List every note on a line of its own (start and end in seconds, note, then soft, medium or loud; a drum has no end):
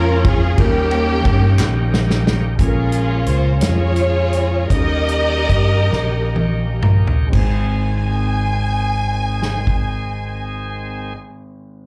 0.00 0.54 F2 medium
0.00 0.60 A#2 medium
0.00 0.54 F3 medium
0.00 0.53 G#3 medium
0.00 0.54 G#3 medium
0.00 0.54 A#3 medium
0.00 0.55 C#4 medium
0.00 0.57 C#4 medium
0.00 0.55 F4 medium
0.00 0.54 G#4 medium
0.00 0.26 A#4 loud
0.00 0.56 A#4 medium
0.25 0.57 G#4 medium
0.25 kick loud
0.25 ride soft
0.56 1.25 D#2 loud
0.56 2.55 D#3 medium
0.56 1.55 D#3 medium
0.56 0.64 F#3 medium
0.56 2.55 G3 medium
0.56 2.55 A#3 medium
0.56 2.55 C#4 medium
0.56 2.56 D#4 medium
0.56 2.55 G4 medium
0.56 kick medium
0.56 ride medium
0.60 2.57 G3 medium
0.60 1.89 A#3 medium
0.60 1.89 C#4 medium
0.60 1.93 G4 loud
0.60 2.57 A#4 medium
0.91 ride soft
1.25 1.56 G2 medium
1.25 kick loud
1.25 ride soft
1.58 2.55 A#1 medium
1.58 snare medium
1.58 clap loud
1.94 snare medium
2.10 snare medium
2.27 snare loud
2.55 3.23 A#1 medium
2.55 3.57 A#2 medium
2.55 4.65 G#3 medium
2.55 4.65 C#4 medium
2.55 4.67 F4 soft
2.55 kick medium
2.55 closed hi-hat medium
2.59 4.67 F3 medium
2.59 4.67 A#3 soft
2.59 4.67 C#4 soft
2.59 3.59 C#4 medium
2.59 3.58 F4 medium
2.59 3.23 G#4 medium
2.59 4.67 G#4 medium
2.59 2.67 A4 soft
2.67 4.71 A#4 medium
2.92 closed hi-hat soft
3.26 3.58 C#2 medium
3.26 3.59 C5 medium
3.26 closed hi-hat soft
3.61 4.66 F2 medium
3.61 4.67 F4 medium
3.61 4.67 G#4 medium
3.61 4.66 C#5 loud
3.61 snare loud
3.61 closed hi-hat medium
3.96 closed hi-hat soft
4.33 closed hi-hat soft
4.68 5.45 D#2 medium
4.68 7.29 D#3 medium
4.68 5.88 D#3 medium
4.68 7.28 G3 medium
4.68 7.29 A#3 medium
4.68 7.29 C#4 medium
4.68 7.30 D#4 medium
4.68 7.29 G4 medium
4.68 kick medium
4.68 closed hi-hat medium
4.72 6.80 G4 medium
4.72 4.79 A4 medium
4.72 6.80 A#4 medium
4.72 6.80 D#5 loud
4.80 7.34 A#4 medium
5.08 closed hi-hat soft
5.49 5.88 G2 medium
5.49 kick medium
5.49 closed hi-hat soft
5.91 7.29 A#1 medium
5.91 snare soft
6.36 6.80 D#5 medium
6.36 high tom medium
6.83 7.30 A#5 medium
6.83 mid tom medium
7.07 floor tom medium
7.27 11.07 G#3 medium
7.27 11.11 C4 medium
7.32 11.12 G#1 medium
7.32 11.14 G#1 medium
7.32 11.13 D#3 medium
7.32 11.13 G#3 medium
7.32 11.13 C4 medium
7.32 11.14 D#4 medium
7.32 11.13 G#4 medium
7.32 11.14 G#5 medium
7.32 kick medium
7.32 crash medium
7.37 11.18 G#4 medium
9.43 snare soft
9.67 kick medium